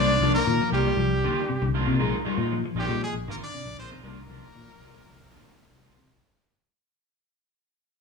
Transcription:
Already playing: C2 D#3 A#3 D4 F4 D5
0.00 D4
0.21 C2 D#3 F3 A#3 D4 F4
0.35 A#3 A#4
0.47 A#2 D#3
0.60 F3, muted fingered electric bass stroke
0.72 C2 D#3 G3 A#3 F4 G4, muted clean electric guitar stroke
0.87 G3
0.97 C2 F3
1.24 D3 D#3 A#3 D4 F4
1.49 C3, muted fingered electric bass stroke
1.62 C2 D3
1.74 D#3 A#3 D4 F4
1.87 C3 A#3 D4 F4
1.99 A#1 D#3 G#3 D#4 F4
2.25 D#3 G3 G#3 D#4 F4, muted fingered electric bass stroke
2.37 A#2 G#3 D#4 F4
2.52 F3
2.65 F3
2.75 A#1 D#3 G#3 D#4 F4
2.79 G3 G4
2.88 A#2 G3
3.02 F3 G#3 G#4
3.13 A#1
3.26 G#1 D3 D#3 G#3 A#3 D#4 F4
3.31 A#4
3.43 D4 D5
3.54 C3
3.65 A#1 D3
3.78 A#1 D#3 G#3 C4 D#4 F4 C5
3.91 C3 G#3 D#4 F4
4.03 C2 D#3 G3 A#3 D4 F4 A#4
4.29 C2 D#3 F3 D4 F4, muted clean electric guitar stroke
4.55 A#2 D#3
4.68 F3, muted fingered electric bass stroke
4.80 C2 D#3 A#3 D4 F4
4.94 G3
5.06 C2 F3
5.31 D3 D#3 A#3 D4 F4
5.56 C3, muted fingered electric bass stroke
5.70 C2 D3
5.83 D#3 A#3 D4 F4
5.96 C3 D3

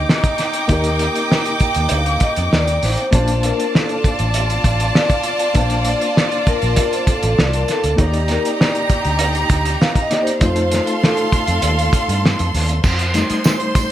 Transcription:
Already playing: A#3 D#4 G4 A#4 D#5 G5 D6
0.09 snare
0.24 kick, closed hi-hat
0.38 snare, closed hi-hat
0.53 closed hi-hat
0.68 D#2 A#3 D#4 G4, kick, closed hi-hat
0.73 A#4
0.84 closed hi-hat
0.99 closed hi-hat
1.16 closed hi-hat
1.32 snare
1.46 closed hi-hat
1.60 G5, muted fingered electric bass stroke, kick, closed hi-hat
1.75 D#2, closed hi-hat
1.89 D2, closed hi-hat
1.93 F5
2.06 closed hi-hat
2.20 D#5, kick, closed hi-hat
2.36 F2, closed hi-hat
2.53 D#2 D5, snare
2.68 closed hi-hat
2.83 A1 C5, snare, open hi-hat
2.97 closed hi-hat
3.11 A#1 A#3 C#4 F4 D5 A5, kick, closed hi-hat
3.16 C5
3.20 D4
3.28 closed hi-hat
3.43 A#4, closed hi-hat
3.60 closed hi-hat
3.74 A4, snare
3.89 closed hi-hat
4.04 muted fingered electric bass stroke, kick, closed hi-hat
4.19 A1, closed hi-hat
4.34 closed hi-hat
4.50 closed hi-hat
4.64 A1, kick, closed hi-hat
4.80 closed hi-hat
4.95 D5, snare
5.10 F5, kick, closed hi-hat
5.23 D5, closed hi-hat
5.39 closed hi-hat
5.54 A#1 A#3 D4 F5 A5, kick, closed hi-hat
5.59 C5
5.70 closed hi-hat
5.85 D5, closed hi-hat
6.01 closed hi-hat
6.17 snare
6.32 closed hi-hat
6.47 A#4, muted fingered electric bass stroke, kick, closed hi-hat
6.62 A#1, closed hi-hat
6.76 kick, closed hi-hat
6.93 C5, closed hi-hat
7.07 A4, muted fingered electric bass stroke, kick, closed hi-hat
7.23 A1, closed hi-hat
7.39 C2 D5, snare
7.53 A#4, closed hi-hat
7.68 A4, snare, closed hi-hat
7.84 D2, closed hi-hat
7.96 D#2 A#3 D#4 G4, kick, closed hi-hat
8.00 C#5 A#5
8.07 D5
8.13 closed hi-hat
8.28 A#4, snare, closed hi-hat
8.45 D5, closed hi-hat
8.61 snare
8.75 closed hi-hat
8.90 muted fingered electric bass stroke, kick, closed hi-hat
9.05 D2, closed hi-hat
9.19 closed hi-hat
9.35 closed hi-hat
9.50 D2, kick, closed hi-hat
9.65 closed hi-hat
9.81 F5, snare
9.95 kick, closed hi-hat
10.02 D#5
10.11 A#3 D#4 G4 D5, snare, closed hi-hat
10.22 C5
10.27 closed hi-hat
10.41 F2 A3 D#4 F4 A4 C5 F5 C6, kick, closed hi-hat
10.46 C5
10.56 closed hi-hat
10.71 snare, closed hi-hat
10.84 A4, closed hi-hat
11.04 snare
11.17 closed hi-hat
11.32 muted fingered electric bass stroke, kick, closed hi-hat
11.47 F2, closed hi-hat
11.62 D#2, closed hi-hat
11.79 closed hi-hat
11.93 kick, closed hi-hat
12.09 G2, closed hi-hat
12.26 snare
12.39 F2, closed hi-hat
12.54 D#2, snare, open hi-hat
12.69 closed hi-hat
12.83 F2 C5 C6, kick, crash, tambourine
12.99 closed hi-hat
13.14 G3 A3 D#4, snare, closed hi-hat, tambourine
13.30 muted fingered electric bass stroke, closed hi-hat, tambourine
13.44 snare, tambourine
13.60 closed hi-hat
13.75 kick, closed hi-hat, tambourine

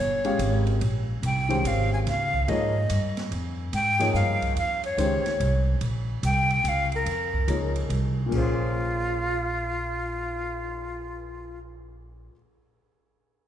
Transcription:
Already playing: C#5
0.00 G1
0.24 G#3 C#4 G4 C#5 F5, ride
0.39 G#1, hi-hat pedal, ride
0.67 ride
0.81 A#1, ride
1.22 C2 G5, hi-hat pedal, ride
1.49 D#3 G#3 C#4 G4 C5, ride
1.64 G#1 F5, hi-hat pedal, ride
1.94 G#5
2.07 C#2 F5, snare, ride
2.34 kick
2.48 G#2 F3 A#3 D#4 G#4 C#5 D#5, ride
2.90 G2, hi-hat pedal, ride
3.17 snare, ride
3.31 F2, ride
3.73 G#2 G5, hi-hat pedal, ride
3.99 F3 A#3 D#4 G#4 C#5, snare, ride
4.14 G2 F5, snare, hi-hat pedal
4.42 kick, ride
4.56 F2 F5, ride
4.84 C#5, ride
4.97 C#2 D#3 G#3 C#4 G4 C5, hi-hat pedal, ride
5.25 muted upright bass stroke, snare, ride
5.40 C2, ride
5.81 A#1, ride
6.23 C2 G5, hi-hat pedal, ride
6.50 ride
6.64 C#2, hi-hat pedal, ride
6.69 F5
6.92 A#4, ride
7.06 F2, ride
7.34 kick
7.48 C#2 F3 A#3 D#4 G#4 C#5, hi-hat pedal, ride
7.76 ride
7.89 C2, ride
8.26 A#2 A#3
8.31 A#1 C#4 F4 G#4, kick, crash
8.38 C5
8.59 cymbal swell

